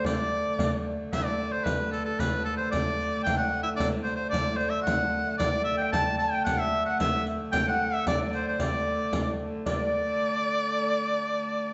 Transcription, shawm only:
\new Staff \with { instrumentName = "Shawm" } { \time 2/4 \key d \mixolydian \tempo 4 = 112 d''4. r8 | e''16 d''8 c''16 b'8 a'16 a'16 | b'8 a'16 c''16 d''4 | g''16 fis''8 e''16 d''8 c''16 c''16 |
d''8 c''16 e''16 fis''4 | d''8 e''16 g''16 a''8 a''16 g''16 | fis''16 e''8 fis''16 e''8 r8 | g''16 fis''8 e''16 d''8 c''16 c''16 |
d''4. r8 | d''2~ | d''2 | }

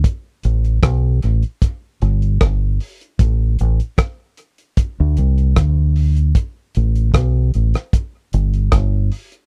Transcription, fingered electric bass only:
\new Staff \with { instrumentName = "Fingered electric bass" } { \clef bass \time 4/4 \key a \minor \tempo 4 = 76 r8 a,,8 b,,8 a,,16 r8. g,,8 g,,8 r8 | a,,8 a,,16 r4. d,16 c,8 d,4 | r8 a,,8 b,,8 a,,16 r8. g,,8 g,,8 r8 | }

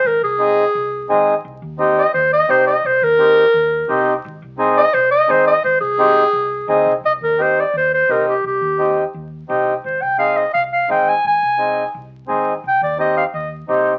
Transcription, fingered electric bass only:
\new Staff \with { instrumentName = "Fingered electric bass" } { \clef bass \time 4/4 \key c \minor \tempo 4 = 171 aes,,8 c,4. c,4 aes,,4 | c,8 ees,4. ees,4 c,4 | c,8 ees,4. ees,4 c,4 | aes,,8 c,4. c,4 aes,,4 |
aes,,8 c,4. c,4 d,8 c,8 | c,8 ees,4. ees,4 c,4 | c,8 ees,4. ees,4 c,4 | aes,,8 c,4. c,4 aes,,4 |
aes,,8 c,4. c,4 aes,,4 | c,8 ees,4. ees,4 c,4 | }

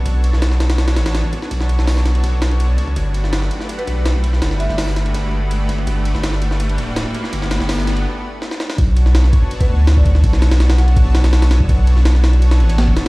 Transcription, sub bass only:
\new Staff \with { instrumentName = "Sub bass" } { \clef bass \time 4/4 \key b \minor \tempo 4 = 165 b,,8. b,,4.~ b,,16 a,,4 r8 | b,,8. b,,2~ b,,8 b,,16 cis,8 | g,,4. r4 b,,4. | g,,8. g,,2.~ g,,16 |
g,,8. g,,4.~ g,,16 d,,4 r8 | g,,8. g,,4~ g,,16 r2 | b,,4. r4 d,4. | b,,8. b,,2.~ b,,16 |
b,,8. b,,4.~ b,,16 a,,4 r8 | }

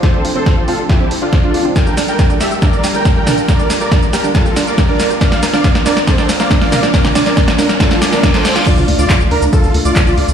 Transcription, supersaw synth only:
\new Staff \with { instrumentName = "Supersaw synth" } { \time 4/4 \key d \minor \tempo 4 = 139 <a' c''>8 r16 <a' c''>8 r16 <f' a'>16 r16 <e' g'>8 r16 <d' f'>16 r16 <d' f'>8 r16 | <bes' g''>8 r16 <bes' g''>8 r16 <g' e''>16 r16 <bes' d''>8 r16 <bes' g''>16 r16 <bes' g''>8 r16 | <bes' d''>8 r16 <bes' d''>8 r16 <g' bes'>16 r16 <f' a'>8 r16 <bes' d''>16 r16 <bes' d''>8 r16 | <d'' f''>8 r16 <d'' f''>8 r16 <bes' d''>16 r16 <a' c''>8 r16 <d'' f''>16 r16 <d'' f''>8 r16 |
<bes' d''>8 r16 <bes' d''>8 r16 <d' bes'>16 r16 <f' a'>8 r16 <d' bes'>16 r16 <a' c''>8 r16 | <f' d''>8 r16 <f' d''>8 r16 <d' bes'>16 r16 <f' a'>8 r16 <f' d''>16 r16 <f' d''>8 r16 | }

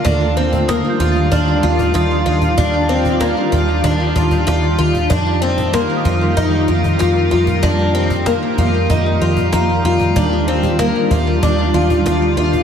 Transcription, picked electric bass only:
\new Staff \with { instrumentName = "Picked electric bass" } { \clef bass \time 4/4 \key ees \lydian \tempo 4 = 95 ees,4~ ees,16 r16 ees,8 ees,8 ees,8 ees,8 ees,8 | ees,4~ ees,16 r16 ees,8 ees,8 ees,8 ees,8 ees,8 | f,4~ f,16 r16 f,8 f,8 f,8 f,8 f,8 | f,4~ f,16 r16 f,8 f,8 f,8 f,8 f,8 |
ees,4~ ees,16 r16 ees,8 ees,8 ees,8 ees,8 ees,8 | }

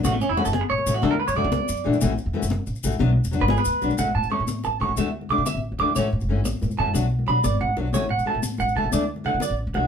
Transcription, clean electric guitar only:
\new Staff \with { instrumentName = "Clean electric guitar" } { \time 12/8 \key a \major \tempo 4. = 122 fis'16 a16 cis'16 e'16 fis'16 a'16 gis'16 r16 cis''8. fis'16 a'16 bes'16 b'16 cis''16 d''2 | r1 r16 b'16 gis'16 b'4 r16 | fis''8 a''8 cis'''8 r8 a''8 cis'''8 e''8 r8 d'''8 e''8 r8 d'''8 | cis''8 r2 a''8 r4 b''8 d''8 fis''8 r8 |
cis''8 fis''8 a''8 r8 fis''8 a''8 d''8 r8 fis''8 d''8 r8 fis''8 | }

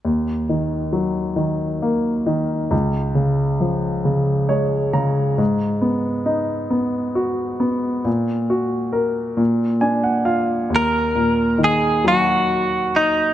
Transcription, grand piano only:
<<
  \new Staff \with { instrumentName = "Grand piano" } { \time 6/8 \key ees \minor \tempo 4. = 45 r2. | r2 des''8 bes''8 | r2. | r2 aes''16 ges''16 f''8 |
r2. | }
  \new Staff \with { instrumentName = "Grand piano" } { \clef bass \time 6/8 \key ees \minor ees,8 ees8 ges8 ees8 bes8 ees8 | des,8 des8 f8 des8 aes8 des8 | aes,8 ces'8 ees'8 ces'8 ges'8 ces'8 | bes,8 ges'8 bes'8 bes,8 d'8 f'8 |
ees,8 bes,8 ees8 ges4. | }
>>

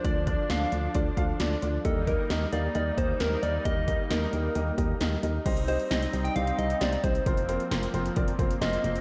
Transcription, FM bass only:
\new Staff \with { instrumentName = "FM bass" } { \clef bass \time 4/4 \key c \dorian \tempo 4 = 133 d,4 d,8 d,8 d,8 d,8 d,8 d,8 | ees,4 ees,8 ees,8 ees,8 ees,8 ees,8 ees,8 | ees,4 ees,8 ees,8 ees,8 ees,8 ees,8 ees,8 | c,4 c,8 c,8 c,8 c,8 c,8 c,8 |
f,,4 f,,8 f,,8 f,,8 f,,8 f,,8 f,,8 | }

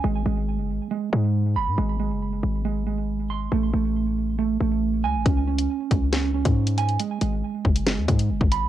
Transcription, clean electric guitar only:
\new Staff \with { instrumentName = "Clean electric guitar" } { \time 4/4 \key gis \phrygian \tempo 4 = 138 gis8 gis4. gis8 gis4 b''8 | gis8 gis4. gis8 gis4 bis''8 | a8 a4. a8 a4 gis''8 | cis'8 cis'4. cis'8 cis'4 gis''8 |
gis8 gis4. gis8 gis4 b''8 | }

